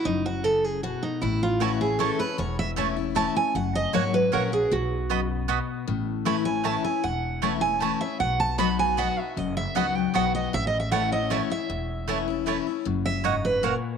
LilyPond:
<<
  \new Staff \with { instrumentName = "Steel-string acoustic guitar" } { \time 3/4 \key a \lydian \tempo 4 = 155 dis'8 fis'8 a'8 gis'8 fis'8 dis'8 | e'8 eis'8 fis'8 gis'8 a'8 b'8 | cis''8 e''8 r4 a''8 gis''8 | fis''8 dis''8 cis''8 b'8 ais'8 gis'8 |
fis'4. r4. | r4 b''8 gis''8 a''8 gis''8 | fis''4. gis''8 a''8 e''8 | fis''8 a''8 b''8 gis''8 fis''8 e''8 |
dis''8 e''8 fis''8 g''8 fis''8 dis''8 | \tuplet 3/2 { e''8 dis''8 e''8 } fis''8 dis''8 cis''8 e''8~ | e''2 r4 | r8 e''8 dis''8 b'8 ais'8 r8 | }
  \new Staff \with { instrumentName = "Mandolin" } { \time 3/4 \key a \lydian r2. | r4 <a e' cis'' a''>16 r8. <a e' cis'' a''>16 r8. | r4 <a e' cis'' a''>16 r8. <a e' cis'' a''>16 r8. | r4 <ais fis' cis'' fis''>16 r8. <ais fis' cis'' fis''>16 r8. |
r4 <b fis' dis'' b''>16 r8. <b fis' dis'' b''>16 r8. | r4 <a e' cis'' a''>16 r8. <a e' cis'' a''>16 r8. | r4 <a e' cis'' a''>16 r8. <a e' cis'' a''>16 r8. | r4 <b fis' dis'' b''>16 r8. <b fis' dis'' b''>16 r8. |
r4 <b fis' dis'' b''>16 r8. <b fis' dis'' b''>16 r8. | r4 <a e' cis'' a''>16 r8. <a e' cis'' a''>16 r8. | r4 <a e' cis'' a''>16 r8. <a e' cis'' a''>16 r8. | r4 <ais fis' cis'' fis''>16 r8. <ais fis' cis'' fis''>16 r8. | }
  \new Staff \with { instrumentName = "Steel-string acoustic guitar" } { \time 3/4 \key a \lydian << { r2. | r4 <e a cis' e'>8 <cis' e'>8 <e a cis' e'>8 <cis' e'>8 | r4 <e a cis' e'>8 <cis' e'>8 <e a cis' e'>8 <cis' e'>8 | r4 <fis ais cis' fis'>8 <cis' fis'>8 <fis ais cis' fis'>8 <cis' fis'>8 |
r2. | r4 <e a cis' e'>8 <cis' e'>8 <e a cis' e'>8 <cis' e'>8 | r4 <e a cis' e'>8 <cis' e'>8 <e a cis' e'>8 <cis' e'>8 | r4 <fis b dis' fis'>4 <fis b dis' fis'>8 <dis' fis'>8 |
r4 <fis b dis' fis'>8 <dis' fis'>8 <fis b dis' fis'>4 | r4 <e a cis' e'>8 <cis' e'>8 <e a cis' e'>8 <cis' e'>8 | r4 <e a cis' e'>8 <cis' e'>8 <e a cis' e'>8 <cis' e'>8 | r2. | } \\ { fis,4 cis4 b,4 | a,2 r4 | e,2 r4 | fis,2 r4 |
b,4 fis,4 b,4 | a,2 r4 | e,2 r4 | b,2 r4 |
fis,2 r4 | a,2 r4 | e,2 r4 | fis,4 gis,4 ais,4 | } >> }
  \new Staff \with { instrumentName = "Upright bass" } { \clef bass \time 3/4 \key a \lydian fis,,2. | a,,2. | e,,2. | fis,,4 gis,,4 ais,,4 |
b,,2. | a,,2. | e,,2. | b,,2. |
fis,,4 cis,4 b,,4 | a,,2. | e,,2. | fis,,2. | }
>>